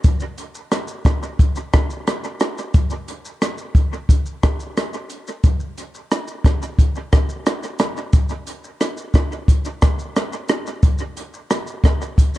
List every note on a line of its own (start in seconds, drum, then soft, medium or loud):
0.04 kick loud
0.04 closed hi-hat medium
0.04 shaker medium
0.20 shaker medium
0.38 closed hi-hat medium
0.38 shaker medium
0.55 shaker medium
0.72 cross-stick medium
0.72 closed hi-hat medium
0.72 shaker medium
0.88 shaker medium
1.05 kick medium
1.05 cross-stick medium
1.05 closed hi-hat soft
1.05 shaker soft
1.23 shaker medium
1.39 kick medium
1.39 closed hi-hat medium
1.39 shaker medium
1.56 shaker medium
1.73 kick medium
1.73 cross-stick loud
1.73 closed hi-hat medium
1.73 shaker medium
1.90 shaker soft
2.07 cross-stick medium
2.07 closed hi-hat medium
2.07 shaker medium
2.24 shaker medium
2.40 cross-stick medium
2.40 closed hi-hat medium
2.40 shaker medium
2.58 shaker medium
2.74 kick loud
2.74 closed hi-hat medium
2.74 shaker medium
2.90 shaker medium
3.08 closed hi-hat medium
3.08 shaker medium
3.25 shaker medium
3.42 cross-stick medium
3.42 closed hi-hat medium
3.42 shaker medium
3.58 shaker medium
3.75 kick medium
3.75 closed hi-hat soft
3.75 shaker soft
3.93 shaker soft
4.09 kick medium
4.09 closed hi-hat medium
4.09 shaker medium
4.26 shaker medium
4.43 kick medium
4.43 cross-stick medium
4.43 closed hi-hat medium
4.43 shaker medium
4.60 shaker soft
4.77 cross-stick medium
4.77 closed hi-hat medium
4.77 shaker medium
4.93 shaker medium
5.10 closed hi-hat medium
5.10 shaker medium
5.27 shaker medium
5.44 kick loud
5.44 closed hi-hat medium
5.44 shaker medium
5.60 shaker medium
5.78 closed hi-hat medium
5.78 shaker medium
5.94 shaker medium
6.11 cross-stick medium
6.11 closed hi-hat medium
6.11 shaker medium
6.28 shaker soft
6.44 kick medium
6.44 cross-stick medium
6.44 closed hi-hat medium
6.44 shaker medium
6.62 shaker medium
6.79 kick medium
6.79 closed hi-hat medium
6.79 shaker medium
6.95 shaker medium
7.12 kick medium
7.12 cross-stick medium
7.12 closed hi-hat medium
7.12 shaker medium
7.29 shaker soft
7.46 cross-stick medium
7.46 closed hi-hat medium
7.46 shaker medium
7.63 shaker medium
7.79 cross-stick medium
7.79 closed hi-hat medium
7.79 shaker medium
7.97 shaker medium
8.13 kick loud
8.13 closed hi-hat medium
8.13 shaker medium
8.29 shaker soft
8.47 closed hi-hat medium
8.47 shaker medium
8.64 shaker medium
8.81 cross-stick medium
8.81 closed hi-hat medium
8.81 shaker medium
8.97 shaker soft
9.14 kick medium
9.14 cross-stick medium
9.14 closed hi-hat soft
9.14 shaker medium
9.32 shaker medium
9.48 kick medium
9.48 closed hi-hat medium
9.48 shaker medium
9.65 shaker medium
9.82 kick medium
9.82 cross-stick medium
9.82 closed hi-hat medium
9.82 shaker medium
9.99 shaker soft
10.16 cross-stick medium
10.16 closed hi-hat medium
10.16 shaker medium
10.33 shaker medium
10.49 cross-stick medium
10.49 closed hi-hat medium
10.49 shaker medium
10.67 shaker medium
10.83 kick loud
10.83 closed hi-hat medium
10.83 shaker medium
10.98 shaker medium
11.17 closed hi-hat medium
11.17 shaker medium
11.34 shaker medium
11.51 cross-stick medium
11.51 closed hi-hat medium
11.51 shaker medium
11.67 shaker soft
11.84 kick medium
11.84 cross-stick medium
11.84 closed hi-hat soft
11.84 shaker soft
12.02 shaker medium
12.18 kick medium
12.18 closed hi-hat medium
12.18 shaker medium
12.34 shaker medium